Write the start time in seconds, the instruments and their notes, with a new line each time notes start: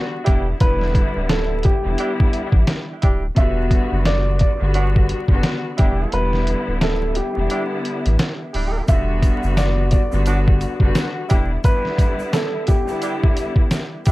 Already playing: string section D3 G3 B3 F#4
0.24 sub bass E1, string section D3 G3 B3 E4, horn section G3 D4 E4 G4, kick, closed hi-hat
0.60 sub bass E1, string section D3 G3 B3 E4, upright piano B4, kick, closed hi-hat
0.81 snare
0.95 kick, closed hi-hat
1.16 sub bass D1
1.29 upright piano A4, snare, closed hi-hat
1.63 upright piano G4, kick, closed hi-hat
1.82 sub bass E1, string section D3 G3 B3 E4
1.98 horn section G3 D4 E4 G4, closed hi-hat
2.20 kick
2.33 closed hi-hat
2.52 sub bass A1, kick
2.67 snare, closed hi-hat
3.02 sub bass D1, horn section G3 D4 E4 G4, kick, closed hi-hat
3.36 sub bass E1, string section D3 G3 B3 F#4, upright piano E5, kick, closed hi-hat
3.71 kick, closed hi-hat
3.92 sub bass F#1
4.05 upright piano D5, snare, closed hi-hat
4.39 upright piano D5, kick, closed hi-hat
4.59 sub bass G1, string section D3 G3 B3 F#4
4.74 horn section F#3 B3 D4 F#4, closed hi-hat
4.96 kick
5.09 closed hi-hat
5.28 sub bass F#1, string section D3 G3 B3 F#4, kick
5.43 snare, closed hi-hat
5.77 sub bass E1, string section D3 G3 B3 E4, horn section G3 D4 E4 G4, kick, closed hi-hat
6.11 sub bass E1, string section D3 G3 B3 E4, upright piano B4, closed hi-hat
6.33 snare
6.47 closed hi-hat
6.68 sub bass D1
6.81 upright piano A4, snare, closed hi-hat
7.15 upright piano G4, closed hi-hat
7.34 sub bass E1, string section D3 G3 B3 E4
7.50 horn section G3 D4 E4 G4, closed hi-hat
7.85 closed hi-hat
8.06 sub bass A1, closed hi-hat
8.19 snare, closed hi-hat
8.53 sub bass D1, horn section G3 D4 E4 G4, open hi-hat
8.88 sub bass E1, string section D3 G3 B3 F#4, upright piano E5, kick, closed hi-hat, shaker
9.23 kick, closed hi-hat, shaker
9.43 sub bass F#1, shaker
9.57 upright piano D5, snare, closed hi-hat, shaker
9.91 upright piano D5, kick, closed hi-hat, shaker
10.10 sub bass G1, string section D3 G3 B3 F#4, shaker
10.26 horn section F#3 B3 D4 F#4, closed hi-hat, shaker
10.48 kick
10.61 closed hi-hat, shaker
10.79 sub bass F#1, string section D3 G3 B3 F#4, kick
10.95 snare, closed hi-hat, shaker
11.28 sub bass E1, string section D3 G3 B3 E4, horn section G3 D4 E4 G4, kick, closed hi-hat, shaker
11.63 string section D3 G3 B3 E4, upright piano B4, kick, closed hi-hat, shaker
11.85 snare
11.98 kick, closed hi-hat, shaker
12.19 shaker
12.33 upright piano A4, snare, closed hi-hat, shaker
12.67 upright piano G4, kick, closed hi-hat, shaker
12.86 string section D3 G3 B3 E4, shaker
13.02 horn section G3 D4 E4 G4, closed hi-hat, shaker
13.24 kick
13.37 closed hi-hat, shaker
13.56 kick
13.71 snare, closed hi-hat, shaker
14.06 horn section G3 D4 E4 G4, kick, closed hi-hat, shaker